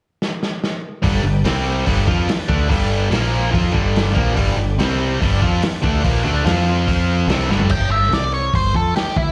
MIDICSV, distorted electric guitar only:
0, 0, Header, 1, 3, 480
1, 0, Start_track
1, 0, Tempo, 416667
1, 1192, Time_signature, 4, 2, 24, 8
1, 10734, End_track
2, 0, Start_track
2, 0, Title_t, "Distorted electric guitar"
2, 0, Program_c, 0, 30
2, 1183, Note_on_c, 0, 43, 84
2, 1188, Note_on_c, 0, 50, 95
2, 1194, Note_on_c, 0, 55, 99
2, 1394, Note_off_c, 0, 43, 0
2, 1403, Note_off_c, 0, 50, 0
2, 1408, Note_on_c, 0, 43, 69
2, 1417, Note_on_c, 0, 50, 66
2, 1425, Note_off_c, 0, 55, 0
2, 1612, Note_off_c, 0, 43, 0
2, 1616, Note_off_c, 0, 50, 0
2, 1661, Note_on_c, 0, 48, 110
2, 1663, Note_on_c, 0, 55, 101
2, 1672, Note_on_c, 0, 60, 109
2, 2133, Note_off_c, 0, 55, 0
2, 2139, Note_off_c, 0, 48, 0
2, 2143, Note_on_c, 0, 43, 96
2, 2144, Note_off_c, 0, 60, 0
2, 2147, Note_on_c, 0, 50, 87
2, 2147, Note_on_c, 0, 55, 97
2, 2377, Note_off_c, 0, 50, 0
2, 2380, Note_off_c, 0, 43, 0
2, 2382, Note_off_c, 0, 55, 0
2, 2382, Note_on_c, 0, 53, 103
2, 2389, Note_on_c, 0, 60, 82
2, 2393, Note_on_c, 0, 65, 102
2, 2619, Note_off_c, 0, 53, 0
2, 2623, Note_off_c, 0, 60, 0
2, 2624, Note_off_c, 0, 65, 0
2, 2861, Note_on_c, 0, 50, 99
2, 2862, Note_on_c, 0, 62, 100
2, 2865, Note_on_c, 0, 57, 101
2, 3085, Note_off_c, 0, 50, 0
2, 3086, Note_on_c, 0, 43, 96
2, 3095, Note_off_c, 0, 57, 0
2, 3099, Note_off_c, 0, 62, 0
2, 3099, Note_on_c, 0, 50, 96
2, 3099, Note_on_c, 0, 55, 108
2, 3570, Note_off_c, 0, 50, 0
2, 3571, Note_off_c, 0, 43, 0
2, 3574, Note_off_c, 0, 55, 0
2, 3575, Note_on_c, 0, 46, 100
2, 3579, Note_on_c, 0, 53, 104
2, 3585, Note_on_c, 0, 58, 116
2, 4038, Note_off_c, 0, 53, 0
2, 4047, Note_off_c, 0, 46, 0
2, 4051, Note_on_c, 0, 53, 93
2, 4054, Note_off_c, 0, 58, 0
2, 4059, Note_on_c, 0, 60, 100
2, 4059, Note_on_c, 0, 65, 98
2, 4286, Note_off_c, 0, 53, 0
2, 4291, Note_on_c, 0, 50, 106
2, 4294, Note_on_c, 0, 43, 78
2, 4297, Note_off_c, 0, 60, 0
2, 4297, Note_off_c, 0, 65, 0
2, 4306, Note_on_c, 0, 55, 98
2, 4759, Note_off_c, 0, 50, 0
2, 4764, Note_on_c, 0, 46, 99
2, 4767, Note_off_c, 0, 55, 0
2, 4772, Note_on_c, 0, 53, 106
2, 4774, Note_off_c, 0, 43, 0
2, 4778, Note_on_c, 0, 58, 112
2, 5009, Note_off_c, 0, 46, 0
2, 5013, Note_off_c, 0, 53, 0
2, 5016, Note_off_c, 0, 58, 0
2, 5017, Note_on_c, 0, 50, 93
2, 5020, Note_on_c, 0, 43, 88
2, 5022, Note_on_c, 0, 55, 108
2, 5256, Note_off_c, 0, 50, 0
2, 5257, Note_off_c, 0, 43, 0
2, 5259, Note_off_c, 0, 55, 0
2, 5272, Note_on_c, 0, 43, 60
2, 5275, Note_on_c, 0, 50, 72
2, 5463, Note_off_c, 0, 43, 0
2, 5464, Note_off_c, 0, 50, 0
2, 5517, Note_on_c, 0, 48, 100
2, 5523, Note_on_c, 0, 55, 103
2, 5531, Note_on_c, 0, 60, 103
2, 5986, Note_off_c, 0, 48, 0
2, 5988, Note_on_c, 0, 43, 96
2, 5989, Note_off_c, 0, 55, 0
2, 5993, Note_off_c, 0, 60, 0
2, 6000, Note_on_c, 0, 50, 93
2, 6003, Note_on_c, 0, 55, 110
2, 6222, Note_off_c, 0, 43, 0
2, 6228, Note_off_c, 0, 50, 0
2, 6229, Note_off_c, 0, 55, 0
2, 6233, Note_on_c, 0, 53, 87
2, 6238, Note_on_c, 0, 60, 94
2, 6238, Note_on_c, 0, 65, 109
2, 6464, Note_off_c, 0, 53, 0
2, 6467, Note_off_c, 0, 60, 0
2, 6467, Note_off_c, 0, 65, 0
2, 6710, Note_on_c, 0, 50, 84
2, 6719, Note_on_c, 0, 57, 103
2, 6727, Note_on_c, 0, 62, 110
2, 6943, Note_off_c, 0, 50, 0
2, 6947, Note_off_c, 0, 57, 0
2, 6951, Note_off_c, 0, 62, 0
2, 6958, Note_on_c, 0, 46, 106
2, 6960, Note_on_c, 0, 53, 100
2, 6964, Note_on_c, 0, 58, 109
2, 7181, Note_off_c, 0, 46, 0
2, 7186, Note_on_c, 0, 50, 84
2, 7188, Note_off_c, 0, 53, 0
2, 7190, Note_off_c, 0, 58, 0
2, 7193, Note_on_c, 0, 57, 91
2, 7201, Note_on_c, 0, 62, 98
2, 7421, Note_off_c, 0, 50, 0
2, 7424, Note_off_c, 0, 57, 0
2, 7428, Note_off_c, 0, 62, 0
2, 7434, Note_on_c, 0, 53, 100
2, 7439, Note_on_c, 0, 60, 92
2, 7440, Note_on_c, 0, 65, 107
2, 8386, Note_off_c, 0, 53, 0
2, 8388, Note_off_c, 0, 60, 0
2, 8388, Note_off_c, 0, 65, 0
2, 8394, Note_on_c, 0, 48, 86
2, 8397, Note_on_c, 0, 55, 85
2, 8402, Note_on_c, 0, 60, 96
2, 8626, Note_off_c, 0, 48, 0
2, 8627, Note_off_c, 0, 55, 0
2, 8629, Note_on_c, 0, 43, 84
2, 8630, Note_off_c, 0, 60, 0
2, 8635, Note_on_c, 0, 50, 91
2, 8640, Note_on_c, 0, 55, 107
2, 8863, Note_off_c, 0, 43, 0
2, 8866, Note_off_c, 0, 50, 0
2, 8869, Note_off_c, 0, 55, 0
2, 10734, End_track
3, 0, Start_track
3, 0, Title_t, "Muted distorted electric guitar strokes"
3, 2619, Note_on_c, 9, 29, 55
3, 2735, Note_off_c, 9, 29, 0
3, 6482, Note_on_c, 9, 29, 56
3, 6598, Note_off_c, 9, 29, 0
3, 10734, End_track
0, 0, End_of_file